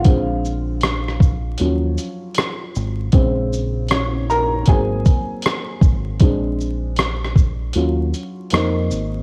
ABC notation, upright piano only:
X:1
M:4/4
L:1/8
Q:"Swing 16ths" 1/4=78
K:Bbm
V:1 name="Upright piano"
[Ff]6- [Ff] z | z2 [Dd] [Bb] [Aa]4- | [Aa]6 z2 |]
V:2 name="Upright piano"
[=D,A,C]4 [F,G,_D]3 z | [D,A,C] z3 [G,B,C]4 | [A,C=D]3 z [G,_DF]2 [B,CE]2 |]